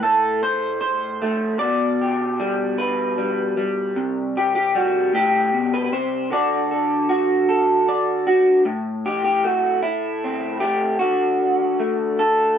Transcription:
Already playing: A2
0.03 A3 A4
0.43 C5
0.81 C5
1.22 A3
1.59 B2 D5
2.01 G4
2.40 G3
2.78 B4
3.18 G3
3.57 G3
3.96 C3
4.37 G4
4.55 G4
4.75 G3 F#4
5.14 A2 G4
5.53 B2
5.74 B4
5.84 B4
5.92 C3 C5
6.31 D3 F#4 A4 D5
6.71 A4
7.09 F#4
7.49 A4
7.89 D5
8.27 F#4
8.65 A2
9.06 G4
9.24 G4
9.44 A3 F#4
9.82 E4
10.24 C4
10.60 A3 G4
10.99 D3 F#4
11.80 A3
12.19 A4

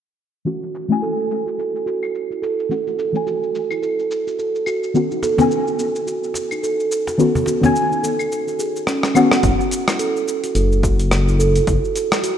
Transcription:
0.45 E3 A3 C#4 F#4, shaker
0.63 shaker
0.75 shaker
0.88 E3 A3 C#4 E4 G#5, shaker
1.02 A4, shaker
1.19 shaker
1.31 shaker
1.46 F#4, shaker
1.58 A4, shaker
1.76 shaker
1.86 F#4, shaker
2.03 claves, shaker
2.15 shaker
2.31 E4, shaker
2.42 A4, shaker
2.59 shaker
2.69 E3 A3 C#4 F#4, shaker
2.87 F#4, shaker
2.99 A4, shaker
3.13 E3 A3 C#4 G#5, shaker
3.27 F#4, shaker
3.43 shaker
3.55 shaker
3.71 E4, claves, shaker
3.83 A4, shaker
3.99 shaker
4.11 shaker
4.27 F#4, shaker
4.39 A4, shaker
4.55 shaker
4.66 F#4, claves, shaker
4.83 shaker
4.94 D#3 B3 C#4 F#4, shaker
5.11 D#4, shaker
5.23 A4, cajon slap, shaker
5.38 D#3 B3 C#4 G#5, cajon bass, cajon slap, shaker
5.51 shaker
5.67 F#4, shaker
5.79 A4, shaker
5.96 shaker
6.07 F#4, shaker
6.24 shaker
6.34 cajon slap, shaker
6.51 D#4, claves, shaker
6.63 A4, shaker
6.80 shaker
6.92 shaker
7.07 F#4, cajon slap, shaker
7.18 D#3 B3 C#4 F#4 A4, shaker
7.35 cajon bass, shaker
7.46 F#4, cajon slap, shaker
7.61 D#3 B3 C#4, cajon bass, cajon slap, shaker
7.65 G#5
7.76 shaker
7.91 D#4, shaker
8.03 A4, shaker
8.19 claves, shaker
8.32 shaker
8.48 F#4, shaker
8.59 G#4, shaker
8.76 shaker
8.87 C#4, cross-stick, shaker
9.03 cross-stick, shaker
9.14 D#3 B3 C#4 F#4, claves, shaker
9.31 F#5, cross-stick, shaker
9.43 F#1 F#4, kick, closed hi-hat, shaker
9.61 shaker
9.71 closed hi-hat, shaker
9.87 E4, cross-stick, closed hi-hat, claves, shaker
9.99 A4, closed hi-hat, shaker
10.16 shaker
10.28 shaker
10.44 F#4, closed hi-hat, shaker
10.55 F#1 A4, closed hi-hat, shaker
10.72 shaker
10.83 F#4, kick, closed hi-hat, shaker
10.99 closed hi-hat, shaker
11.11 cross-stick, closed hi-hat, shaker
11.28 E4, shaker
11.39 A4, shaker
11.56 closed hi-hat, shaker
11.67 F#1, kick, closed hi-hat, shaker
11.84 F#4, shaker
11.95 A4, closed hi-hat, shaker
12.12 cross-stick, closed hi-hat, shaker
12.23 F#4, closed hi-hat, shaker

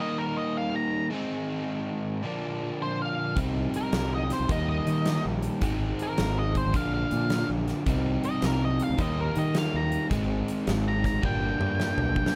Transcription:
0.00 D#3 G3 A#3 D#4 D#5
0.19 A#4
0.37 D#5
0.57 F5
0.76 A#5
1.10 G#2 D#3 G#3 C4 D#4
2.23 A#2 D3 F3 A#3
2.27 D4
2.82 C5
3.02 F5
3.36 C2 C3 G3 C4 D#4, kick, closed hi-hat
3.74 A#4, closed hi-hat
3.93 C2, snare, closed hi-hat
4.15 D#5
4.30 C5, snare, closed hi-hat
4.40 C2
4.48 D#2 D#3 G3 A#3 D#4 D#5, kick, closed hi-hat
4.69 D#5
4.87 D#3, closed hi-hat
5.05 snare, closed hi-hat
5.25 A#1
5.42 closed hi-hat
5.61 G#1 G#2 D#3 G#3 C4 D#4, kick, closed hi-hat
5.99 A#4, closed hi-hat
6.18 G#1, snare, closed hi-hat
6.38 D#5
6.55 C5, kick, closed hi-hat
6.66 G#1
6.73 A#1 A#2 D3 F3 A#3 D4 F5, kick, closed hi-hat
6.94 F5
7.11 A#2, closed hi-hat
7.30 snare, closed hi-hat
7.50 A#1
7.68 snare, closed hi-hat
7.86 C2 C3 G3 C4 D#4, kick, closed hi-hat
8.24 D#5, closed hi-hat
8.42 C2 A#4, snare, closed hi-hat
8.65 D#5
8.80 F5, closed hi-hat
8.90 D2
8.97 D#2 D#3 G3 A#3, kick, closed hi-hat
9.01 D#4 D#5
9.21 A#4
9.35 D#3 D#5, closed hi-hat
9.55 F5, snare, closed hi-hat
9.74 D#2 A#5
9.92 closed hi-hat
10.10 G#1 G#2 D#3 G#3 C4, kick, closed hi-hat
10.14 D#4
10.48 closed hi-hat
10.67 G#1, snare, closed hi-hat
10.88 A#5
11.04 A#5, kick, snare, closed hi-hat
11.14 G#1
11.22 G1 G2 D3 G3 A#3 D4 G5, kick, high tom
11.59 G2, mid tom
11.80 snare
11.98 B1, mid tom
12.16 kick
12.26 snare

